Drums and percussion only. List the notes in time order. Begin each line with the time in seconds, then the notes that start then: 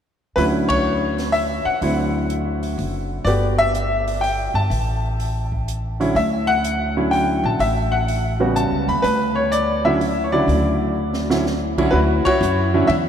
0.38 open hi-hat
0.70 kick, ride
1.18 snare, open hi-hat
1.34 open hi-hat
1.82 open hi-hat
2.30 closed hi-hat
2.63 open hi-hat
2.79 open hi-hat
3.27 open hi-hat
3.75 closed hi-hat
4.08 open hi-hat
4.23 open hi-hat
4.71 open hi-hat
5.20 open hi-hat
5.52 kick
5.68 closed hi-hat
6.01 open hi-hat
6.16 open hi-hat
6.64 closed hi-hat
7.13 open hi-hat
7.60 open hi-hat
8.08 open hi-hat
8.56 closed hi-hat
8.89 open hi-hat
9.04 open hi-hat
9.52 closed hi-hat
10.01 open hi-hat
10.49 open hi-hat
11.13 snare
11.30 snare
11.46 snare
11.78 kick, crash
12.26 kick, ride
12.42 hi-hat pedal
12.89 ride